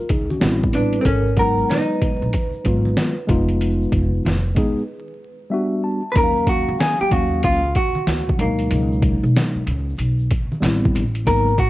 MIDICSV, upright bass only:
0, 0, Header, 1, 3, 480
1, 0, Start_track
1, 0, Key_signature, -6, "minor"
1, 0, Tempo, 638298
1, 791, Time_signature, 4, 2, 24, 8
1, 8797, End_track
2, 0, Start_track
2, 0, Title_t, "Upright bass"
2, 0, Program_c, 0, 32
2, 74, Note_on_c, 0, 37, 85
2, 281, Note_off_c, 0, 37, 0
2, 314, Note_on_c, 0, 33, 94
2, 730, Note_off_c, 0, 33, 0
2, 792, Note_on_c, 0, 32, 92
2, 1209, Note_off_c, 0, 32, 0
2, 1668, Note_on_c, 0, 34, 82
2, 1741, Note_off_c, 0, 34, 0
2, 1998, Note_on_c, 0, 32, 91
2, 2204, Note_off_c, 0, 32, 0
2, 2473, Note_on_c, 0, 29, 91
2, 2890, Note_off_c, 0, 29, 0
2, 2950, Note_on_c, 0, 29, 89
2, 3159, Note_off_c, 0, 29, 0
2, 3195, Note_on_c, 0, 29, 81
2, 3402, Note_off_c, 0, 29, 0
2, 4631, Note_on_c, 0, 39, 91
2, 4976, Note_off_c, 0, 39, 0
2, 5029, Note_on_c, 0, 37, 84
2, 5102, Note_off_c, 0, 37, 0
2, 5355, Note_on_c, 0, 39, 89
2, 5562, Note_off_c, 0, 39, 0
2, 5597, Note_on_c, 0, 37, 92
2, 5803, Note_off_c, 0, 37, 0
2, 6070, Note_on_c, 0, 38, 90
2, 6279, Note_off_c, 0, 38, 0
2, 6310, Note_on_c, 0, 38, 90
2, 6519, Note_off_c, 0, 38, 0
2, 6547, Note_on_c, 0, 37, 101
2, 6893, Note_off_c, 0, 37, 0
2, 6945, Note_on_c, 0, 35, 87
2, 7019, Note_off_c, 0, 35, 0
2, 7269, Note_on_c, 0, 37, 88
2, 7479, Note_off_c, 0, 37, 0
2, 7507, Note_on_c, 0, 35, 88
2, 7717, Note_off_c, 0, 35, 0
2, 7986, Note_on_c, 0, 33, 99
2, 8197, Note_off_c, 0, 33, 0
2, 8233, Note_on_c, 0, 33, 87
2, 8441, Note_off_c, 0, 33, 0
2, 8475, Note_on_c, 0, 32, 111
2, 8797, Note_off_c, 0, 32, 0
2, 8797, End_track
3, 0, Start_track
3, 0, Title_t, "Muted upright bass strokes"
3, 5270, Note_on_c, 9, 29, 46
3, 5345, Note_off_c, 9, 29, 0
3, 7185, Note_on_c, 9, 29, 44
3, 7260, Note_off_c, 9, 29, 0
3, 8797, End_track
0, 0, End_of_file